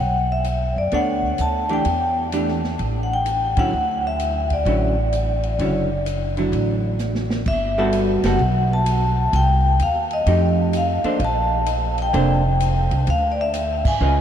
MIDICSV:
0, 0, Header, 1, 6, 480
1, 0, Start_track
1, 0, Tempo, 467290
1, 1908, Time_signature, 4, 2, 24, 8
1, 14595, End_track
2, 0, Start_track
2, 0, Title_t, "Vibraphone"
2, 0, Program_c, 0, 11
2, 0, Note_on_c, 0, 78, 80
2, 285, Note_off_c, 0, 78, 0
2, 330, Note_on_c, 0, 76, 77
2, 804, Note_on_c, 0, 74, 67
2, 812, Note_off_c, 0, 76, 0
2, 961, Note_off_c, 0, 74, 0
2, 971, Note_on_c, 0, 78, 78
2, 1451, Note_on_c, 0, 81, 81
2, 1453, Note_off_c, 0, 78, 0
2, 1766, Note_off_c, 0, 81, 0
2, 1778, Note_on_c, 0, 79, 70
2, 2210, Note_off_c, 0, 79, 0
2, 3115, Note_on_c, 0, 78, 73
2, 3198, Note_off_c, 0, 78, 0
2, 3220, Note_on_c, 0, 79, 94
2, 3692, Note_on_c, 0, 78, 88
2, 3697, Note_off_c, 0, 79, 0
2, 4126, Note_off_c, 0, 78, 0
2, 4181, Note_on_c, 0, 76, 85
2, 4655, Note_on_c, 0, 74, 70
2, 4658, Note_off_c, 0, 76, 0
2, 7163, Note_off_c, 0, 74, 0
2, 7681, Note_on_c, 0, 76, 116
2, 8123, Note_off_c, 0, 76, 0
2, 8491, Note_on_c, 0, 78, 83
2, 8971, Note_on_c, 0, 81, 98
2, 8974, Note_off_c, 0, 78, 0
2, 9614, Note_on_c, 0, 79, 109
2, 9621, Note_off_c, 0, 81, 0
2, 10093, Note_on_c, 0, 77, 89
2, 10096, Note_off_c, 0, 79, 0
2, 10231, Note_off_c, 0, 77, 0
2, 10409, Note_on_c, 0, 75, 84
2, 11059, Note_off_c, 0, 75, 0
2, 11064, Note_on_c, 0, 77, 88
2, 11541, Note_off_c, 0, 77, 0
2, 11551, Note_on_c, 0, 81, 94
2, 11978, Note_off_c, 0, 81, 0
2, 12348, Note_on_c, 0, 79, 80
2, 13458, Note_on_c, 0, 77, 98
2, 13483, Note_off_c, 0, 79, 0
2, 13673, Note_off_c, 0, 77, 0
2, 13679, Note_on_c, 0, 74, 67
2, 13761, Note_off_c, 0, 74, 0
2, 13776, Note_on_c, 0, 76, 86
2, 14255, Note_on_c, 0, 80, 86
2, 14256, Note_off_c, 0, 76, 0
2, 14595, Note_off_c, 0, 80, 0
2, 14595, End_track
3, 0, Start_track
3, 0, Title_t, "Hollow-body jazz guitar"
3, 0, Program_c, 1, 26
3, 944, Note_on_c, 1, 59, 47
3, 953, Note_on_c, 1, 62, 50
3, 954, Note_on_c, 1, 69, 59
3, 957, Note_on_c, 1, 73, 56
3, 1680, Note_off_c, 1, 59, 0
3, 1685, Note_off_c, 1, 62, 0
3, 1685, Note_off_c, 1, 69, 0
3, 1687, Note_off_c, 1, 73, 0
3, 1740, Note_on_c, 1, 52, 47
3, 1749, Note_on_c, 1, 57, 46
3, 1750, Note_on_c, 1, 62, 50
3, 1752, Note_on_c, 1, 67, 59
3, 1888, Note_off_c, 1, 52, 0
3, 1893, Note_off_c, 1, 57, 0
3, 1893, Note_off_c, 1, 62, 0
3, 1894, Note_off_c, 1, 67, 0
3, 2387, Note_on_c, 1, 52, 42
3, 2395, Note_on_c, 1, 57, 46
3, 2395, Note_on_c, 1, 62, 44
3, 2399, Note_on_c, 1, 67, 48
3, 2674, Note_off_c, 1, 52, 0
3, 2677, Note_off_c, 1, 57, 0
3, 2677, Note_off_c, 1, 62, 0
3, 2680, Note_off_c, 1, 67, 0
3, 3669, Note_on_c, 1, 50, 63
3, 3676, Note_on_c, 1, 54, 68
3, 3679, Note_on_c, 1, 61, 66
3, 3685, Note_on_c, 1, 64, 72
3, 3813, Note_off_c, 1, 50, 0
3, 3817, Note_off_c, 1, 54, 0
3, 3818, Note_off_c, 1, 61, 0
3, 3821, Note_off_c, 1, 64, 0
3, 4785, Note_on_c, 1, 50, 51
3, 4791, Note_on_c, 1, 54, 54
3, 4798, Note_on_c, 1, 61, 58
3, 4804, Note_on_c, 1, 64, 55
3, 5074, Note_off_c, 1, 50, 0
3, 5076, Note_off_c, 1, 54, 0
3, 5080, Note_off_c, 1, 61, 0
3, 5083, Note_off_c, 1, 64, 0
3, 5748, Note_on_c, 1, 50, 43
3, 5755, Note_on_c, 1, 54, 43
3, 5760, Note_on_c, 1, 61, 47
3, 5762, Note_on_c, 1, 64, 47
3, 6035, Note_off_c, 1, 50, 0
3, 6039, Note_off_c, 1, 54, 0
3, 6041, Note_off_c, 1, 61, 0
3, 6042, Note_off_c, 1, 64, 0
3, 6545, Note_on_c, 1, 50, 57
3, 6555, Note_on_c, 1, 54, 58
3, 6560, Note_on_c, 1, 64, 53
3, 7156, Note_off_c, 1, 50, 0
3, 7162, Note_off_c, 1, 54, 0
3, 7164, Note_off_c, 1, 64, 0
3, 7992, Note_on_c, 1, 55, 73
3, 7995, Note_on_c, 1, 59, 83
3, 7999, Note_on_c, 1, 66, 80
3, 8002, Note_on_c, 1, 69, 82
3, 8439, Note_off_c, 1, 55, 0
3, 8440, Note_off_c, 1, 59, 0
3, 8442, Note_off_c, 1, 66, 0
3, 8444, Note_off_c, 1, 69, 0
3, 8469, Note_on_c, 1, 55, 64
3, 8472, Note_on_c, 1, 59, 59
3, 8478, Note_on_c, 1, 66, 61
3, 8480, Note_on_c, 1, 69, 70
3, 8614, Note_off_c, 1, 55, 0
3, 8616, Note_off_c, 1, 59, 0
3, 8619, Note_off_c, 1, 66, 0
3, 8620, Note_off_c, 1, 69, 0
3, 10550, Note_on_c, 1, 53, 55
3, 10552, Note_on_c, 1, 57, 53
3, 10555, Note_on_c, 1, 63, 59
3, 10558, Note_on_c, 1, 67, 54
3, 11285, Note_off_c, 1, 53, 0
3, 11286, Note_off_c, 1, 57, 0
3, 11287, Note_off_c, 1, 63, 0
3, 11289, Note_off_c, 1, 67, 0
3, 11344, Note_on_c, 1, 58, 54
3, 11349, Note_on_c, 1, 62, 54
3, 11351, Note_on_c, 1, 69, 62
3, 11357, Note_on_c, 1, 72, 57
3, 11492, Note_off_c, 1, 58, 0
3, 11494, Note_off_c, 1, 62, 0
3, 11495, Note_off_c, 1, 69, 0
3, 11498, Note_off_c, 1, 72, 0
3, 12462, Note_on_c, 1, 58, 66
3, 12468, Note_on_c, 1, 62, 64
3, 12475, Note_on_c, 1, 69, 64
3, 12475, Note_on_c, 1, 72, 70
3, 12752, Note_off_c, 1, 58, 0
3, 12755, Note_off_c, 1, 62, 0
3, 12759, Note_off_c, 1, 69, 0
3, 12759, Note_off_c, 1, 72, 0
3, 14390, Note_on_c, 1, 61, 62
3, 14394, Note_on_c, 1, 65, 57
3, 14401, Note_on_c, 1, 71, 77
3, 14401, Note_on_c, 1, 75, 69
3, 14595, Note_off_c, 1, 61, 0
3, 14595, Note_off_c, 1, 65, 0
3, 14595, Note_off_c, 1, 71, 0
3, 14595, Note_off_c, 1, 75, 0
3, 14595, End_track
4, 0, Start_track
4, 0, Title_t, "Upright bass"
4, 0, Program_c, 2, 32
4, 0, Note_on_c, 2, 35, 74
4, 743, Note_off_c, 2, 35, 0
4, 782, Note_on_c, 2, 42, 59
4, 934, Note_off_c, 2, 42, 0
4, 947, Note_on_c, 2, 38, 74
4, 1394, Note_off_c, 2, 38, 0
4, 1426, Note_on_c, 2, 38, 71
4, 1873, Note_off_c, 2, 38, 0
4, 1904, Note_on_c, 2, 40, 72
4, 2825, Note_off_c, 2, 40, 0
4, 2868, Note_on_c, 2, 33, 76
4, 3625, Note_off_c, 2, 33, 0
4, 3666, Note_on_c, 2, 45, 67
4, 3816, Note_off_c, 2, 45, 0
4, 3832, Note_on_c, 2, 38, 76
4, 4750, Note_off_c, 2, 38, 0
4, 4780, Note_on_c, 2, 33, 79
4, 5704, Note_off_c, 2, 33, 0
4, 5739, Note_on_c, 2, 30, 74
4, 6664, Note_off_c, 2, 30, 0
4, 6698, Note_on_c, 2, 33, 81
4, 7623, Note_off_c, 2, 33, 0
4, 7660, Note_on_c, 2, 31, 75
4, 8422, Note_off_c, 2, 31, 0
4, 8457, Note_on_c, 2, 30, 67
4, 8613, Note_off_c, 2, 30, 0
4, 8619, Note_on_c, 2, 35, 91
4, 9544, Note_off_c, 2, 35, 0
4, 9583, Note_on_c, 2, 36, 83
4, 10033, Note_off_c, 2, 36, 0
4, 10063, Note_on_c, 2, 39, 68
4, 10513, Note_off_c, 2, 39, 0
4, 10543, Note_on_c, 2, 41, 85
4, 11304, Note_off_c, 2, 41, 0
4, 11500, Note_on_c, 2, 34, 84
4, 12424, Note_off_c, 2, 34, 0
4, 12464, Note_on_c, 2, 29, 83
4, 13224, Note_off_c, 2, 29, 0
4, 13264, Note_on_c, 2, 36, 72
4, 13416, Note_off_c, 2, 36, 0
4, 13430, Note_on_c, 2, 38, 84
4, 14187, Note_off_c, 2, 38, 0
4, 14223, Note_on_c, 2, 44, 69
4, 14375, Note_off_c, 2, 44, 0
4, 14387, Note_on_c, 2, 37, 86
4, 14595, Note_off_c, 2, 37, 0
4, 14595, End_track
5, 0, Start_track
5, 0, Title_t, "Muted upright bass strokes"
5, 11340, Note_on_c, 9, 29, 41
5, 11443, Note_off_c, 9, 29, 0
5, 14595, End_track
6, 0, Start_track
6, 0, Title_t, "Drums"
6, 456, Note_on_c, 9, 44, 57
6, 456, Note_on_c, 9, 51, 55
6, 559, Note_off_c, 9, 44, 0
6, 559, Note_off_c, 9, 51, 0
6, 940, Note_on_c, 9, 51, 47
6, 1043, Note_off_c, 9, 51, 0
6, 1262, Note_on_c, 9, 36, 40
6, 1364, Note_off_c, 9, 36, 0
6, 1417, Note_on_c, 9, 44, 50
6, 1417, Note_on_c, 9, 51, 57
6, 1520, Note_off_c, 9, 44, 0
6, 1520, Note_off_c, 9, 51, 0
6, 1738, Note_on_c, 9, 51, 38
6, 1841, Note_off_c, 9, 51, 0
6, 1897, Note_on_c, 9, 51, 58
6, 2000, Note_off_c, 9, 51, 0
6, 2385, Note_on_c, 9, 44, 49
6, 2385, Note_on_c, 9, 51, 62
6, 2488, Note_off_c, 9, 44, 0
6, 2488, Note_off_c, 9, 51, 0
6, 2552, Note_on_c, 9, 38, 26
6, 2654, Note_off_c, 9, 38, 0
6, 2711, Note_on_c, 9, 38, 40
6, 2814, Note_off_c, 9, 38, 0
6, 2866, Note_on_c, 9, 51, 45
6, 2969, Note_off_c, 9, 51, 0
6, 3346, Note_on_c, 9, 44, 54
6, 3346, Note_on_c, 9, 51, 61
6, 3448, Note_off_c, 9, 44, 0
6, 3448, Note_off_c, 9, 51, 0
6, 3664, Note_on_c, 9, 51, 65
6, 3670, Note_on_c, 9, 36, 68
6, 3766, Note_off_c, 9, 51, 0
6, 3773, Note_off_c, 9, 36, 0
6, 4310, Note_on_c, 9, 44, 54
6, 4310, Note_on_c, 9, 51, 55
6, 4413, Note_off_c, 9, 44, 0
6, 4413, Note_off_c, 9, 51, 0
6, 4624, Note_on_c, 9, 51, 44
6, 4630, Note_on_c, 9, 36, 47
6, 4727, Note_off_c, 9, 51, 0
6, 4733, Note_off_c, 9, 36, 0
6, 4788, Note_on_c, 9, 51, 55
6, 4891, Note_off_c, 9, 51, 0
6, 5265, Note_on_c, 9, 44, 54
6, 5265, Note_on_c, 9, 51, 56
6, 5368, Note_off_c, 9, 44, 0
6, 5368, Note_off_c, 9, 51, 0
6, 5582, Note_on_c, 9, 51, 41
6, 5685, Note_off_c, 9, 51, 0
6, 5745, Note_on_c, 9, 51, 55
6, 5848, Note_off_c, 9, 51, 0
6, 6226, Note_on_c, 9, 44, 59
6, 6226, Note_on_c, 9, 51, 63
6, 6329, Note_off_c, 9, 44, 0
6, 6329, Note_off_c, 9, 51, 0
6, 6543, Note_on_c, 9, 51, 44
6, 6645, Note_off_c, 9, 51, 0
6, 6706, Note_on_c, 9, 51, 47
6, 6809, Note_off_c, 9, 51, 0
6, 7179, Note_on_c, 9, 44, 53
6, 7183, Note_on_c, 9, 38, 42
6, 7282, Note_off_c, 9, 44, 0
6, 7286, Note_off_c, 9, 38, 0
6, 7345, Note_on_c, 9, 38, 47
6, 7447, Note_off_c, 9, 38, 0
6, 7502, Note_on_c, 9, 38, 68
6, 7605, Note_off_c, 9, 38, 0
6, 7661, Note_on_c, 9, 49, 66
6, 7665, Note_on_c, 9, 36, 71
6, 7764, Note_off_c, 9, 49, 0
6, 7768, Note_off_c, 9, 36, 0
6, 8142, Note_on_c, 9, 44, 54
6, 8142, Note_on_c, 9, 51, 66
6, 8244, Note_off_c, 9, 44, 0
6, 8244, Note_off_c, 9, 51, 0
6, 8460, Note_on_c, 9, 51, 70
6, 8464, Note_on_c, 9, 38, 82
6, 8562, Note_off_c, 9, 51, 0
6, 8566, Note_off_c, 9, 38, 0
6, 9102, Note_on_c, 9, 44, 47
6, 9102, Note_on_c, 9, 51, 70
6, 9205, Note_off_c, 9, 44, 0
6, 9205, Note_off_c, 9, 51, 0
6, 9585, Note_on_c, 9, 51, 64
6, 9688, Note_off_c, 9, 51, 0
6, 10061, Note_on_c, 9, 44, 57
6, 10061, Note_on_c, 9, 51, 65
6, 10164, Note_off_c, 9, 44, 0
6, 10164, Note_off_c, 9, 51, 0
6, 10380, Note_on_c, 9, 51, 45
6, 10483, Note_off_c, 9, 51, 0
6, 10544, Note_on_c, 9, 51, 64
6, 10647, Note_off_c, 9, 51, 0
6, 11023, Note_on_c, 9, 44, 57
6, 11023, Note_on_c, 9, 51, 65
6, 11126, Note_off_c, 9, 44, 0
6, 11126, Note_off_c, 9, 51, 0
6, 11342, Note_on_c, 9, 51, 47
6, 11444, Note_off_c, 9, 51, 0
6, 11501, Note_on_c, 9, 51, 61
6, 11604, Note_off_c, 9, 51, 0
6, 11981, Note_on_c, 9, 44, 62
6, 11981, Note_on_c, 9, 51, 71
6, 12083, Note_off_c, 9, 44, 0
6, 12083, Note_off_c, 9, 51, 0
6, 12303, Note_on_c, 9, 51, 46
6, 12406, Note_off_c, 9, 51, 0
6, 12469, Note_on_c, 9, 51, 59
6, 12572, Note_off_c, 9, 51, 0
6, 12947, Note_on_c, 9, 44, 61
6, 12947, Note_on_c, 9, 51, 68
6, 13050, Note_off_c, 9, 44, 0
6, 13050, Note_off_c, 9, 51, 0
6, 13263, Note_on_c, 9, 51, 47
6, 13366, Note_off_c, 9, 51, 0
6, 13424, Note_on_c, 9, 51, 63
6, 13527, Note_off_c, 9, 51, 0
6, 13904, Note_on_c, 9, 44, 54
6, 13904, Note_on_c, 9, 51, 69
6, 14007, Note_off_c, 9, 44, 0
6, 14007, Note_off_c, 9, 51, 0
6, 14226, Note_on_c, 9, 49, 81
6, 14227, Note_on_c, 9, 36, 86
6, 14329, Note_off_c, 9, 49, 0
6, 14330, Note_off_c, 9, 36, 0
6, 14595, End_track
0, 0, End_of_file